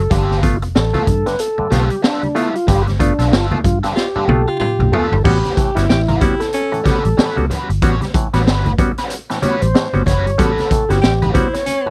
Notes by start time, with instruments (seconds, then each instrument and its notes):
Already playing: tonewheel organ A4
0.10 fingered electric bass G1, clav G2 D3, overdriven electric guitar G3 B3 F4 A4, tonewheel organ G4, kick, closed hi-hat, muted conga
0.30 snare, muted conga, high conga
0.43 clav A3 B3 F4, tonewheel organ F4, kick, closed hi-hat
0.62 fingered electric bass F1, clav B3 F4, muted overdriven electric guitar stroke, closed hi-hat
0.75 fingered electric bass A1, tonewheel organ A4, muted overdriven electric guitar stroke, snare, muted conga
0.93 overdriven electric guitar G3 B3 F4 A4, clav A3 B3 F4, closed hi-hat, muted conga, high conga, low conga
1.07 fingered electric bass G2, tonewheel organ A4, muted overdriven electric guitar stroke, kick, closed hi-hat, low conga
1.26 clav G2 D3, tonewheel organ B4, muted overdriven electric guitar stroke, snare, closed hi-hat
1.39 clav B3 F4, tonewheel organ A4, closed hi-hat
1.58 clav G2 D3, muted overdriven electric guitar stroke, muted fingered electric bass stroke, muted conga
1.70 fingered electric bass B1, overdriven electric guitar G3 B3 F4 A4, clav A3 B3 F4, tonewheel organ G4, snare, closed hi-hat, high conga
1.90 muted overdriven electric guitar stroke, closed hi-hat
2.02 overdriven electric guitar G3 B3 F4 A4, tonewheel organ D4, snare
2.22 muted overdriven electric guitar stroke, closed hi-hat, high conga
2.35 overdriven electric guitar G3 B3 F4 A4, clav A3 B3 F4, tonewheel organ E4, closed hi-hat
2.54 tonewheel organ F4, muted overdriven electric guitar stroke, closed hi-hat
2.67 fingered electric bass G1, clav G2 D3, overdriven electric guitar G3 B3 F4 B4, tonewheel organ G4, kick, closed hi-hat, muted conga
2.87 muted overdriven electric guitar stroke, snare, closed hi-hat, muted conga, high conga
2.99 clav A3 B3 F4, tonewheel organ D4, muted overdriven electric guitar stroke, kick, closed hi-hat
3.19 fingered electric bass B1, overdriven electric guitar G3 B3 F4 A4, clav B3 F4, snare, closed hi-hat
3.32 fingered electric bass G1, overdriven electric guitar G3 B3 F4 A4, tonewheel organ F4, snare
3.51 clav A3 B3 F4, muted conga, high conga, low conga
3.64 fingered electric bass G2, tonewheel organ F4, muted overdriven electric guitar stroke, kick, closed hi-hat, low conga
3.83 clav G2 D3, overdriven electric guitar G3 B3 F4 A4, snare, closed hi-hat
3.95 clav B3 F4, baritone saxophone F4, tonewheel organ G4, muted overdriven electric guitar stroke, snare
4.16 clav G2 D3, overdriven electric guitar G3 B3 F4 A4, muted fingered electric bass stroke, muted conga
4.28 fingered electric bass B1, clav A3 B3 F4, tonewheel organ A4, muted overdriven electric guitar stroke, high tom, high conga
4.47 baritone saxophone F4, tonewheel organ G4, muted overdriven electric guitar stroke
4.60 baritone saxophone F4, muted fingered electric bass stroke, muted overdriven electric guitar stroke, mid tom, muted conga
4.79 fingered electric bass B1, muted overdriven electric guitar stroke, mid tom, muted conga, high conga
4.92 overdriven electric guitar G3 B3 F4 A4, clav A3 B3 F4, tonewheel organ A4, floor tom, low conga
5.12 fingered electric bass G1, muted overdriven electric guitar stroke, floor tom
5.24 fingered electric bass A1, clav G3 B3 C#4 F#4, overdriven electric guitar G3 C#4 F#4 B4, tonewheel organ G4, kick, crash, muted conga
5.44 snare, closed hi-hat, high conga
5.57 clav A2 E3, kick, closed hi-hat
5.75 fingered electric bass G1, clav G3 B3 C#4 F#4, tonewheel organ E4, baritone saxophone E4, muted overdriven electric guitar stroke, snare, closed hi-hat
5.89 fingered electric bass A1, baritone saxophone G4, muted overdriven electric guitar stroke, snare, muted conga
6.08 overdriven electric guitar G3 C#4 F#4 B4, closed hi-hat, muted conga, high conga, low conga
6.21 clav G3 B3 C#4 F#4, baritone saxophone E4, tonewheel organ G4, muted overdriven electric guitar stroke, kick, closed hi-hat, low conga
6.40 tonewheel organ A4, muted overdriven electric guitar stroke, snare, closed hi-hat
6.53 clav C#4 F#4, baritone saxophone C#4, closed hi-hat
6.72 clav A2 E3, muted overdriven electric guitar stroke, closed hi-hat, muted conga
6.84 overdriven electric guitar G3 C#4 F#4 B4, clav G3 B3 C#4 F#4, muted fingered electric bass stroke, kick, snare, closed hi-hat, high conga
7.04 fingered electric bass A1, muted overdriven electric guitar stroke, closed hi-hat
7.17 clav A2 E3, overdriven electric guitar G3 C#4 F#4 B4, muted fingered electric bass stroke, snare, muted conga
7.36 fingered electric bass C#2, clav G3 B3 C#4 F#4, muted overdriven electric guitar stroke, closed hi-hat, muted conga, high conga
7.50 overdriven electric guitar G3 C#4 F#4 B4, closed hi-hat, low conga
7.69 fingered electric bass G1, muted overdriven electric guitar stroke, closed hi-hat
7.82 fingered electric bass A1, clav G3 B3 C#4 F#4, overdriven electric guitar G3 C#4 F#4 C#5, kick, closed hi-hat, muted conga
8.01 muted overdriven electric guitar stroke, snare, closed hi-hat, muted conga, high conga
8.14 clav A2 E3, muted overdriven electric guitar stroke, kick, closed hi-hat
8.33 fingered electric bass A1, clav G3 B3 C#4 F#4, overdriven electric guitar G3 C#4 F#4 B4, snare, closed hi-hat
8.47 fingered electric bass G1, overdriven electric guitar G3 C#4 F#4 B4, snare
8.66 closed hi-hat, muted conga, high conga, low conga
8.78 clav G3 B3 C#4 F#4, muted overdriven electric guitar stroke, kick, closed hi-hat, low conga
8.98 overdriven electric guitar G3 C#4 F#4 B4, snare, closed hi-hat
9.10 clav C#4 F#4, closed hi-hat
9.30 clav A2 E3, muted overdriven electric guitar stroke, snare, closed hi-hat
9.42 clav G3 B3 C#4 F#4, overdriven electric guitar G3 C#4 F#4 B4, tonewheel organ C#5, muted fingered electric bass stroke, closed hi-hat, high conga
9.61 fingered electric bass A1, tonewheel organ C5, muted overdriven electric guitar stroke, closed hi-hat
9.74 clav A2 E3, muted overdriven electric guitar stroke, snare, muted conga
9.93 fingered electric bass G1, clav G3 B3 C#4 F#4, muted overdriven electric guitar stroke, closed hi-hat, high conga
10.06 fingered electric bass F#1, overdriven electric guitar G3 C#4 F#4 B4, clav C#4 F#4, tonewheel organ C#5, kick, snare, closed hi-hat, low conga
10.26 fingered electric bass G1, muted overdriven electric guitar stroke, closed hi-hat
10.38 fingered electric bass A1, clav G3 B3 C#4 F#4, overdriven electric guitar G3 C#4 F#4 B4, tonewheel organ A4, kick, closed hi-hat, muted conga
10.58 snare, closed hi-hat, high conga
10.71 clav A2 E3, kick, closed hi-hat
10.89 fingered electric bass G1, clav G3 B3 C#4 F#4, baritone saxophone E4, tonewheel organ G4, muted overdriven electric guitar stroke, snare, closed hi-hat
11.01 fingered electric bass A1, baritone saxophone G4, muted overdriven electric guitar stroke, snare
11.22 overdriven electric guitar G3 C#4 F#4 B4, closed hi-hat, muted conga, high conga, low conga
11.34 clav G3 B3 C#4 F#4, baritone saxophone E4, tonewheel organ C5, muted overdriven electric guitar stroke, kick, closed hi-hat, low conga
11.54 tonewheel organ C#5, muted overdriven electric guitar stroke, snare, closed hi-hat
11.66 baritone saxophone C#4, clav C#4 F#4, closed hi-hat, muted conga
11.86 clav A2 E3, muted overdriven electric guitar stroke, muted conga